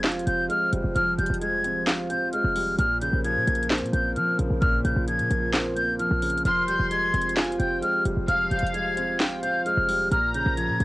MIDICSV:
0, 0, Header, 1, 7, 480
1, 0, Start_track
1, 0, Key_signature, -4, "minor"
1, 0, Tempo, 458015
1, 1001, Time_signature, 4, 2, 24, 8
1, 11365, End_track
2, 0, Start_track
2, 0, Title_t, "Flute"
2, 0, Program_c, 0, 73
2, 281, Note_on_c, 0, 91, 87
2, 502, Note_off_c, 0, 91, 0
2, 522, Note_on_c, 0, 89, 89
2, 743, Note_off_c, 0, 89, 0
2, 1001, Note_on_c, 0, 89, 116
2, 1222, Note_off_c, 0, 89, 0
2, 1240, Note_on_c, 0, 91, 81
2, 1462, Note_off_c, 0, 91, 0
2, 1482, Note_on_c, 0, 92, 84
2, 1933, Note_off_c, 0, 92, 0
2, 2205, Note_on_c, 0, 91, 86
2, 2424, Note_off_c, 0, 91, 0
2, 2440, Note_on_c, 0, 89, 95
2, 2892, Note_off_c, 0, 89, 0
2, 2921, Note_on_c, 0, 89, 101
2, 3142, Note_off_c, 0, 89, 0
2, 3163, Note_on_c, 0, 91, 85
2, 3383, Note_off_c, 0, 91, 0
2, 3398, Note_on_c, 0, 92, 91
2, 3851, Note_off_c, 0, 92, 0
2, 4125, Note_on_c, 0, 91, 83
2, 4344, Note_off_c, 0, 91, 0
2, 4360, Note_on_c, 0, 89, 86
2, 4581, Note_off_c, 0, 89, 0
2, 4836, Note_on_c, 0, 89, 117
2, 5059, Note_off_c, 0, 89, 0
2, 5081, Note_on_c, 0, 91, 82
2, 5302, Note_off_c, 0, 91, 0
2, 5325, Note_on_c, 0, 92, 83
2, 5774, Note_off_c, 0, 92, 0
2, 6041, Note_on_c, 0, 91, 92
2, 6262, Note_off_c, 0, 91, 0
2, 6279, Note_on_c, 0, 89, 83
2, 6731, Note_off_c, 0, 89, 0
2, 6763, Note_on_c, 0, 89, 113
2, 6983, Note_off_c, 0, 89, 0
2, 7002, Note_on_c, 0, 91, 82
2, 7222, Note_off_c, 0, 91, 0
2, 7243, Note_on_c, 0, 92, 100
2, 7694, Note_off_c, 0, 92, 0
2, 7961, Note_on_c, 0, 91, 86
2, 8182, Note_off_c, 0, 91, 0
2, 8202, Note_on_c, 0, 89, 90
2, 8423, Note_off_c, 0, 89, 0
2, 8682, Note_on_c, 0, 89, 118
2, 8902, Note_off_c, 0, 89, 0
2, 8921, Note_on_c, 0, 91, 82
2, 9142, Note_off_c, 0, 91, 0
2, 9163, Note_on_c, 0, 92, 82
2, 9613, Note_off_c, 0, 92, 0
2, 9885, Note_on_c, 0, 91, 84
2, 10104, Note_off_c, 0, 91, 0
2, 10120, Note_on_c, 0, 89, 94
2, 10572, Note_off_c, 0, 89, 0
2, 10601, Note_on_c, 0, 89, 108
2, 10822, Note_off_c, 0, 89, 0
2, 10843, Note_on_c, 0, 91, 83
2, 11063, Note_off_c, 0, 91, 0
2, 11078, Note_on_c, 0, 92, 89
2, 11365, Note_off_c, 0, 92, 0
2, 11365, End_track
3, 0, Start_track
3, 0, Title_t, "Violin section"
3, 0, Program_c, 1, 48
3, 6761, Note_on_c, 1, 84, 127
3, 7679, Note_off_c, 1, 84, 0
3, 7722, Note_on_c, 1, 80, 86
3, 7950, Note_off_c, 1, 80, 0
3, 7961, Note_on_c, 1, 79, 76
3, 8189, Note_off_c, 1, 79, 0
3, 8681, Note_on_c, 1, 77, 118
3, 9599, Note_off_c, 1, 77, 0
3, 9641, Note_on_c, 1, 79, 84
3, 9869, Note_off_c, 1, 79, 0
3, 9881, Note_on_c, 1, 77, 81
3, 10109, Note_off_c, 1, 77, 0
3, 10601, Note_on_c, 1, 82, 107
3, 11365, Note_off_c, 1, 82, 0
3, 11365, End_track
4, 0, Start_track
4, 0, Title_t, "Ambient pad"
4, 0, Program_c, 2, 92
4, 0, Note_on_c, 2, 53, 86
4, 0, Note_on_c, 2, 65, 76
4, 0, Note_on_c, 2, 67, 75
4, 0, Note_on_c, 2, 72, 95
4, 2883, Note_off_c, 2, 53, 0
4, 2883, Note_off_c, 2, 67, 0
4, 2883, Note_off_c, 2, 72, 0
4, 2921, Note_on_c, 2, 58, 81
4, 2921, Note_on_c, 2, 70, 94
4, 2921, Note_on_c, 2, 72, 76
4, 6723, Note_off_c, 2, 58, 0
4, 6723, Note_off_c, 2, 70, 0
4, 6723, Note_off_c, 2, 72, 0
4, 6762, Note_on_c, 2, 53, 85
4, 6762, Note_on_c, 2, 67, 75
4, 6762, Note_on_c, 2, 72, 88
4, 10559, Note_off_c, 2, 65, 0
4, 10563, Note_off_c, 2, 53, 0
4, 10563, Note_off_c, 2, 67, 0
4, 10563, Note_off_c, 2, 72, 0
4, 10601, Note_on_c, 2, 72, 77
4, 10602, Note_on_c, 2, 58, 86
4, 10602, Note_on_c, 2, 65, 76
4, 10602, Note_on_c, 2, 70, 94
4, 11365, Note_off_c, 2, 58, 0
4, 11365, Note_off_c, 2, 65, 0
4, 11365, Note_off_c, 2, 70, 0
4, 11365, Note_off_c, 2, 72, 0
4, 11365, End_track
5, 0, Start_track
5, 0, Title_t, "Grand piano"
5, 0, Program_c, 3, 0
5, 0, Control_c, 3, 64, 127
5, 0, Note_on_c, 3, 53, 97
5, 0, Note_on_c, 3, 55, 85
5, 0, Note_on_c, 3, 56, 93
5, 0, Note_on_c, 3, 60, 82
5, 44, Note_on_c, 3, 65, 108
5, 271, Note_off_c, 3, 60, 0
5, 281, Note_off_c, 3, 53, 0
5, 287, Note_on_c, 3, 60, 87
5, 496, Note_off_c, 3, 56, 0
5, 512, Note_on_c, 3, 56, 92
5, 521, Note_off_c, 3, 55, 0
5, 761, Note_on_c, 3, 55, 83
5, 1003, Note_on_c, 3, 53, 94
5, 1229, Note_off_c, 3, 55, 0
5, 1243, Note_off_c, 3, 65, 0
5, 1244, Note_on_c, 3, 55, 77
5, 1462, Note_off_c, 3, 56, 0
5, 1478, Note_on_c, 3, 56, 91
5, 1484, Note_off_c, 3, 60, 0
5, 1720, Note_on_c, 3, 60, 83
5, 1957, Note_on_c, 3, 65, 103
5, 2184, Note_off_c, 3, 60, 0
5, 2200, Note_on_c, 3, 60, 83
5, 2202, Note_off_c, 3, 53, 0
5, 2429, Note_off_c, 3, 56, 0
5, 2443, Note_off_c, 3, 55, 0
5, 2445, Note_on_c, 3, 56, 92
5, 2680, Note_on_c, 3, 55, 82
5, 2918, Note_on_c, 3, 46, 91
5, 2919, Note_off_c, 3, 65, 0
5, 2920, Note_off_c, 3, 60, 0
5, 2921, Note_off_c, 3, 55, 0
5, 2923, Note_off_c, 3, 56, 0
5, 2937, Control_c, 3, 64, 0
5, 3114, Control_c, 3, 64, 127
5, 3165, Note_on_c, 3, 49, 81
5, 3401, Note_on_c, 3, 53, 92
5, 3646, Note_on_c, 3, 58, 86
5, 3879, Note_on_c, 3, 60, 97
5, 4106, Note_off_c, 3, 58, 0
5, 4120, Note_off_c, 3, 46, 0
5, 4122, Note_on_c, 3, 58, 82
5, 4353, Note_off_c, 3, 53, 0
5, 4363, Note_off_c, 3, 49, 0
5, 4369, Note_on_c, 3, 53, 85
5, 4600, Note_on_c, 3, 49, 78
5, 4839, Note_on_c, 3, 46, 101
5, 5063, Note_off_c, 3, 49, 0
5, 5079, Note_on_c, 3, 49, 77
5, 5080, Note_off_c, 3, 60, 0
5, 5306, Note_off_c, 3, 53, 0
5, 5322, Note_off_c, 3, 58, 0
5, 5322, Note_on_c, 3, 53, 88
5, 5558, Note_on_c, 3, 58, 84
5, 5799, Note_on_c, 3, 60, 97
5, 6022, Note_off_c, 3, 58, 0
5, 6037, Note_on_c, 3, 58, 78
5, 6040, Note_off_c, 3, 46, 0
5, 6265, Note_off_c, 3, 53, 0
5, 6280, Note_off_c, 3, 49, 0
5, 6281, Note_on_c, 3, 53, 91
5, 6520, Note_on_c, 3, 49, 79
5, 6745, Note_off_c, 3, 53, 0
5, 6759, Note_off_c, 3, 58, 0
5, 6760, Note_off_c, 3, 60, 0
5, 6760, Note_on_c, 3, 53, 96
5, 6761, Note_off_c, 3, 49, 0
5, 6777, Control_c, 3, 64, 0
5, 6962, Control_c, 3, 64, 127
5, 7000, Note_on_c, 3, 55, 83
5, 7241, Note_on_c, 3, 56, 91
5, 7484, Note_on_c, 3, 60, 83
5, 7724, Note_on_c, 3, 65, 109
5, 7951, Note_off_c, 3, 60, 0
5, 7961, Note_off_c, 3, 53, 0
5, 7967, Note_on_c, 3, 60, 87
5, 8177, Note_off_c, 3, 56, 0
5, 8192, Note_on_c, 3, 56, 90
5, 8201, Note_off_c, 3, 55, 0
5, 8441, Note_on_c, 3, 55, 83
5, 8684, Note_on_c, 3, 53, 94
5, 8909, Note_off_c, 3, 55, 0
5, 8923, Note_off_c, 3, 65, 0
5, 8924, Note_on_c, 3, 55, 76
5, 9143, Note_off_c, 3, 56, 0
5, 9158, Note_on_c, 3, 56, 90
5, 9164, Note_off_c, 3, 60, 0
5, 9400, Note_on_c, 3, 60, 86
5, 9637, Note_on_c, 3, 65, 109
5, 9864, Note_off_c, 3, 60, 0
5, 9879, Note_on_c, 3, 60, 89
5, 9882, Note_off_c, 3, 53, 0
5, 10108, Note_off_c, 3, 56, 0
5, 10123, Note_off_c, 3, 55, 0
5, 10124, Note_on_c, 3, 56, 90
5, 10359, Note_on_c, 3, 55, 82
5, 10598, Note_on_c, 3, 46, 94
5, 10599, Note_off_c, 3, 65, 0
5, 10600, Note_off_c, 3, 55, 0
5, 10600, Note_off_c, 3, 60, 0
5, 10603, Note_off_c, 3, 56, 0
5, 10615, Control_c, 3, 64, 0
5, 10771, Control_c, 3, 64, 127
5, 10845, Note_on_c, 3, 49, 81
5, 11081, Note_on_c, 3, 53, 90
5, 11326, Note_on_c, 3, 58, 86
5, 11365, Note_off_c, 3, 46, 0
5, 11365, Note_off_c, 3, 49, 0
5, 11365, Note_off_c, 3, 53, 0
5, 11365, Note_off_c, 3, 58, 0
5, 11365, End_track
6, 0, Start_track
6, 0, Title_t, "808-style bass"
6, 0, Program_c, 4, 38
6, 0, Note_on_c, 4, 29, 107
6, 262, Note_off_c, 4, 29, 0
6, 281, Note_on_c, 4, 29, 108
6, 512, Note_off_c, 4, 29, 0
6, 761, Note_on_c, 4, 29, 106
6, 876, Note_off_c, 4, 29, 0
6, 881, Note_on_c, 4, 29, 107
6, 996, Note_off_c, 4, 29, 0
6, 1001, Note_on_c, 4, 29, 117
6, 1232, Note_off_c, 4, 29, 0
6, 1241, Note_on_c, 4, 29, 109
6, 1357, Note_off_c, 4, 29, 0
6, 1361, Note_on_c, 4, 29, 105
6, 2519, Note_off_c, 4, 29, 0
6, 2561, Note_on_c, 4, 29, 104
6, 2907, Note_off_c, 4, 29, 0
6, 2921, Note_on_c, 4, 34, 117
6, 3267, Note_off_c, 4, 34, 0
6, 3281, Note_on_c, 4, 34, 110
6, 3521, Note_on_c, 4, 46, 98
6, 3537, Note_off_c, 4, 34, 0
6, 3635, Note_off_c, 4, 46, 0
6, 3641, Note_on_c, 4, 34, 110
6, 4001, Note_on_c, 4, 46, 102
6, 4017, Note_off_c, 4, 34, 0
6, 4115, Note_off_c, 4, 46, 0
6, 4121, Note_on_c, 4, 34, 116
6, 4361, Note_on_c, 4, 53, 100
6, 4377, Note_off_c, 4, 34, 0
6, 4589, Note_off_c, 4, 53, 0
6, 4601, Note_on_c, 4, 34, 98
6, 4716, Note_off_c, 4, 34, 0
6, 4721, Note_on_c, 4, 34, 106
6, 5067, Note_off_c, 4, 34, 0
6, 5081, Note_on_c, 4, 34, 107
6, 5196, Note_off_c, 4, 34, 0
6, 5201, Note_on_c, 4, 34, 107
6, 5441, Note_on_c, 4, 46, 102
6, 5457, Note_off_c, 4, 34, 0
6, 5555, Note_off_c, 4, 46, 0
6, 5561, Note_on_c, 4, 34, 107
6, 6368, Note_off_c, 4, 34, 0
6, 6401, Note_on_c, 4, 34, 103
6, 6747, Note_off_c, 4, 34, 0
6, 6761, Note_on_c, 4, 29, 119
6, 7107, Note_off_c, 4, 29, 0
6, 7122, Note_on_c, 4, 29, 104
6, 7467, Note_off_c, 4, 29, 0
6, 7482, Note_on_c, 4, 29, 108
6, 7942, Note_off_c, 4, 29, 0
6, 7962, Note_on_c, 4, 29, 110
6, 8192, Note_off_c, 4, 29, 0
6, 8442, Note_on_c, 4, 29, 101
6, 8557, Note_off_c, 4, 29, 0
6, 8562, Note_on_c, 4, 29, 106
6, 8677, Note_off_c, 4, 29, 0
6, 8682, Note_on_c, 4, 29, 118
6, 8912, Note_off_c, 4, 29, 0
6, 8922, Note_on_c, 4, 29, 106
6, 9037, Note_off_c, 4, 29, 0
6, 9042, Note_on_c, 4, 29, 103
6, 10200, Note_off_c, 4, 29, 0
6, 10242, Note_on_c, 4, 29, 102
6, 10587, Note_off_c, 4, 29, 0
6, 10601, Note_on_c, 4, 34, 117
6, 10947, Note_off_c, 4, 34, 0
6, 10961, Note_on_c, 4, 34, 109
6, 11201, Note_on_c, 4, 46, 102
6, 11217, Note_off_c, 4, 34, 0
6, 11315, Note_off_c, 4, 46, 0
6, 11321, Note_on_c, 4, 34, 110
6, 11365, Note_off_c, 4, 34, 0
6, 11365, End_track
7, 0, Start_track
7, 0, Title_t, "Drums"
7, 41, Note_on_c, 9, 38, 127
7, 41, Note_on_c, 9, 42, 67
7, 48, Note_on_c, 9, 39, 105
7, 121, Note_off_c, 9, 42, 0
7, 121, Note_on_c, 9, 42, 67
7, 146, Note_off_c, 9, 38, 0
7, 153, Note_off_c, 9, 39, 0
7, 201, Note_off_c, 9, 42, 0
7, 201, Note_on_c, 9, 42, 66
7, 281, Note_off_c, 9, 42, 0
7, 281, Note_on_c, 9, 42, 78
7, 386, Note_off_c, 9, 42, 0
7, 521, Note_on_c, 9, 42, 76
7, 626, Note_off_c, 9, 42, 0
7, 761, Note_on_c, 9, 42, 85
7, 866, Note_off_c, 9, 42, 0
7, 1001, Note_on_c, 9, 42, 85
7, 1106, Note_off_c, 9, 42, 0
7, 1242, Note_on_c, 9, 42, 59
7, 1322, Note_off_c, 9, 42, 0
7, 1322, Note_on_c, 9, 42, 58
7, 1401, Note_off_c, 9, 42, 0
7, 1401, Note_on_c, 9, 42, 60
7, 1481, Note_off_c, 9, 42, 0
7, 1481, Note_on_c, 9, 42, 75
7, 1586, Note_off_c, 9, 42, 0
7, 1721, Note_on_c, 9, 42, 84
7, 1826, Note_off_c, 9, 42, 0
7, 1961, Note_on_c, 9, 38, 127
7, 1961, Note_on_c, 9, 42, 80
7, 1968, Note_on_c, 9, 39, 100
7, 2066, Note_off_c, 9, 38, 0
7, 2066, Note_off_c, 9, 42, 0
7, 2073, Note_off_c, 9, 39, 0
7, 2201, Note_on_c, 9, 42, 77
7, 2306, Note_off_c, 9, 42, 0
7, 2441, Note_on_c, 9, 42, 73
7, 2545, Note_off_c, 9, 42, 0
7, 2681, Note_on_c, 9, 46, 92
7, 2786, Note_off_c, 9, 46, 0
7, 2921, Note_on_c, 9, 42, 88
7, 3026, Note_off_c, 9, 42, 0
7, 3161, Note_on_c, 9, 42, 77
7, 3266, Note_off_c, 9, 42, 0
7, 3401, Note_on_c, 9, 42, 72
7, 3506, Note_off_c, 9, 42, 0
7, 3641, Note_on_c, 9, 42, 65
7, 3721, Note_off_c, 9, 42, 0
7, 3721, Note_on_c, 9, 42, 64
7, 3801, Note_off_c, 9, 42, 0
7, 3801, Note_on_c, 9, 42, 68
7, 3881, Note_off_c, 9, 42, 0
7, 3881, Note_on_c, 9, 38, 126
7, 3881, Note_on_c, 9, 42, 68
7, 3888, Note_on_c, 9, 39, 102
7, 3961, Note_off_c, 9, 42, 0
7, 3961, Note_on_c, 9, 42, 66
7, 3986, Note_off_c, 9, 38, 0
7, 3993, Note_off_c, 9, 39, 0
7, 4041, Note_off_c, 9, 42, 0
7, 4041, Note_on_c, 9, 42, 65
7, 4121, Note_off_c, 9, 42, 0
7, 4121, Note_on_c, 9, 42, 76
7, 4226, Note_off_c, 9, 42, 0
7, 4361, Note_on_c, 9, 42, 74
7, 4466, Note_off_c, 9, 42, 0
7, 4601, Note_on_c, 9, 42, 85
7, 4706, Note_off_c, 9, 42, 0
7, 4841, Note_on_c, 9, 36, 125
7, 4841, Note_on_c, 9, 42, 83
7, 4946, Note_off_c, 9, 36, 0
7, 4946, Note_off_c, 9, 42, 0
7, 5081, Note_on_c, 9, 42, 70
7, 5186, Note_off_c, 9, 42, 0
7, 5321, Note_on_c, 9, 42, 76
7, 5426, Note_off_c, 9, 42, 0
7, 5441, Note_on_c, 9, 42, 44
7, 5546, Note_off_c, 9, 42, 0
7, 5561, Note_on_c, 9, 42, 82
7, 5666, Note_off_c, 9, 42, 0
7, 5801, Note_on_c, 9, 38, 127
7, 5802, Note_on_c, 9, 42, 82
7, 5809, Note_on_c, 9, 39, 104
7, 5906, Note_off_c, 9, 38, 0
7, 5906, Note_off_c, 9, 42, 0
7, 5913, Note_off_c, 9, 39, 0
7, 6042, Note_on_c, 9, 42, 76
7, 6146, Note_off_c, 9, 42, 0
7, 6281, Note_on_c, 9, 42, 75
7, 6386, Note_off_c, 9, 42, 0
7, 6521, Note_on_c, 9, 42, 73
7, 6521, Note_on_c, 9, 46, 91
7, 6601, Note_off_c, 9, 42, 0
7, 6601, Note_on_c, 9, 42, 75
7, 6626, Note_off_c, 9, 46, 0
7, 6682, Note_off_c, 9, 42, 0
7, 6682, Note_on_c, 9, 42, 69
7, 6762, Note_off_c, 9, 42, 0
7, 6762, Note_on_c, 9, 42, 83
7, 6867, Note_off_c, 9, 42, 0
7, 7002, Note_on_c, 9, 42, 76
7, 7107, Note_off_c, 9, 42, 0
7, 7242, Note_on_c, 9, 42, 77
7, 7347, Note_off_c, 9, 42, 0
7, 7482, Note_on_c, 9, 42, 65
7, 7562, Note_off_c, 9, 42, 0
7, 7562, Note_on_c, 9, 42, 66
7, 7642, Note_off_c, 9, 42, 0
7, 7642, Note_on_c, 9, 42, 67
7, 7721, Note_on_c, 9, 38, 127
7, 7722, Note_off_c, 9, 42, 0
7, 7722, Note_on_c, 9, 42, 70
7, 7729, Note_on_c, 9, 39, 104
7, 7802, Note_off_c, 9, 42, 0
7, 7802, Note_on_c, 9, 42, 67
7, 7826, Note_off_c, 9, 38, 0
7, 7833, Note_off_c, 9, 39, 0
7, 7882, Note_off_c, 9, 42, 0
7, 7882, Note_on_c, 9, 42, 66
7, 7962, Note_off_c, 9, 42, 0
7, 7962, Note_on_c, 9, 42, 77
7, 8067, Note_off_c, 9, 42, 0
7, 8202, Note_on_c, 9, 42, 75
7, 8306, Note_off_c, 9, 42, 0
7, 8442, Note_on_c, 9, 42, 85
7, 8546, Note_off_c, 9, 42, 0
7, 8682, Note_on_c, 9, 42, 85
7, 8786, Note_off_c, 9, 42, 0
7, 8922, Note_on_c, 9, 42, 60
7, 9002, Note_off_c, 9, 42, 0
7, 9002, Note_on_c, 9, 42, 60
7, 9082, Note_off_c, 9, 42, 0
7, 9082, Note_on_c, 9, 42, 61
7, 9162, Note_off_c, 9, 42, 0
7, 9162, Note_on_c, 9, 42, 74
7, 9266, Note_off_c, 9, 42, 0
7, 9402, Note_on_c, 9, 42, 81
7, 9507, Note_off_c, 9, 42, 0
7, 9642, Note_on_c, 9, 38, 123
7, 9642, Note_on_c, 9, 42, 79
7, 9649, Note_on_c, 9, 39, 101
7, 9746, Note_off_c, 9, 38, 0
7, 9747, Note_off_c, 9, 42, 0
7, 9754, Note_off_c, 9, 39, 0
7, 9881, Note_on_c, 9, 42, 76
7, 9986, Note_off_c, 9, 42, 0
7, 10121, Note_on_c, 9, 42, 71
7, 10226, Note_off_c, 9, 42, 0
7, 10361, Note_on_c, 9, 46, 93
7, 10466, Note_off_c, 9, 46, 0
7, 10601, Note_on_c, 9, 42, 86
7, 10706, Note_off_c, 9, 42, 0
7, 10841, Note_on_c, 9, 42, 74
7, 10946, Note_off_c, 9, 42, 0
7, 11081, Note_on_c, 9, 42, 76
7, 11186, Note_off_c, 9, 42, 0
7, 11321, Note_on_c, 9, 42, 65
7, 11365, Note_off_c, 9, 42, 0
7, 11365, End_track
0, 0, End_of_file